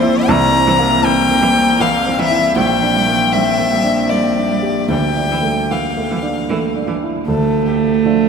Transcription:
Already playing: C2 A#3 C4 C5
0.02 E4
0.28 C2 E3 A#5
0.53 C4
0.67 E3
0.79 A#3
1.03 E3 C4 G5
1.29 A#3
1.42 E3
1.54 C4
1.80 E3 A#3 F5
2.07 C4
2.18 E3 E5
2.31 E4
2.56 A#1 G3 G5
2.82 D4
2.95 G3
3.07 A#3
3.33 G3 C4 E5
3.58 A#3
3.72 G3
3.84 D4
4.09 G3 A#3 D5
4.36 D4
4.50 G3
4.62 G4
4.88 D2 E3 G5
5.17 D4
5.31 E3
5.42 A3
5.69 E3 A#3 F5
5.97 A3
6.11 E3
6.22 D4
6.50 E3 A3
6.76 D4
6.87 E3
7.03 E4
7.27 D2 A3 A4
7.66 G4
8.05 F3 D4 F4 E5

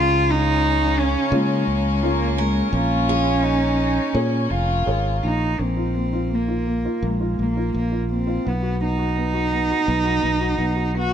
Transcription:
Already playing: C#2 C#3 C#4 F4 A#4 F5 C#6
0.31 D#4
1.00 C#4
1.32 C#3 G#3 A#3 C#4 F4
1.67 C#2
2.02 A#3 C#4 F4
2.38 G#3 A#4
2.73 A#1 A#3 C#4 F4 G#5
3.09 G#4
3.43 D#4
4.14 A#2 C#4 G#4 A#4 C#5
4.50 F1 F4
4.86 G#1 G#4 A#4 C#5
5.23 A#1 D#4
5.59 A#1 A#3 C4
5.77 F4
5.95 A#3
6.13 F4
6.30 A#3
6.35 A#3
6.48 F4
6.67 A#3
6.85 F4
7.02 A#1 G#3 A#3
7.21 F4
7.39 A#1 A#3
7.57 F4
7.74 A#1 A#3
7.92 F4
8.10 A#3 C4
8.27 F4
8.45 B1 B3
8.62 F#4
8.80 B3
8.84 D#4
8.98 F#4
9.17 B3
9.34 F#4
9.53 B3
9.70 F#4
9.87 B1 B3
10.03 F#4
10.21 B1 B3
10.40 F#4
10.58 B1 B3
10.76 F#4
10.95 B3
10.99 F#4

